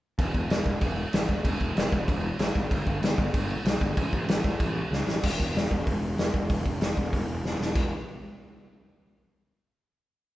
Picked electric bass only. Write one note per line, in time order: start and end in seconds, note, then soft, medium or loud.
0.18 0.29 E1 medium
0.34 0.45 E1 medium
0.49 0.61 E1 medium
0.65 0.76 E1 medium
0.82 1.03 E1 medium
1.14 1.24 A1 medium
1.29 1.39 E1 medium
1.44 1.55 E1 loud
1.60 1.71 E1 medium
1.76 1.87 E1 loud
1.92 2.03 E1 loud
2.08 2.30 E1 medium
2.39 2.50 A1 medium
2.55 2.66 G#1 medium
2.71 2.81 G1 loud
2.87 2.97 G1 medium
3.02 3.13 G1 loud
3.18 3.29 G1 medium
3.34 3.56 G1 medium
3.65 3.76 B1 medium
3.81 3.92 G1 medium
3.97 4.08 A1 medium
4.13 4.23 A1 medium
4.28 4.39 A1 loud
4.45 4.55 A1 loud
4.60 4.81 A1 medium
4.91 5.02 C#2 medium
5.06 5.17 A1 medium
5.23 5.36 E1 loud
5.40 5.52 E1 medium
5.53 5.67 E1 medium
5.71 5.83 E1 medium
5.87 5.99 E1 medium
6.01 6.14 E1 medium
6.17 6.30 E1 medium
6.34 6.47 E1 medium
6.50 6.62 E1 medium
6.66 6.78 E1 medium
6.80 6.93 E1 medium
6.97 7.10 E1 medium
7.13 7.25 E1 medium
7.29 7.41 E1 medium
7.44 7.57 E1 medium
7.59 7.72 E1 medium
7.75 7.90 E1 medium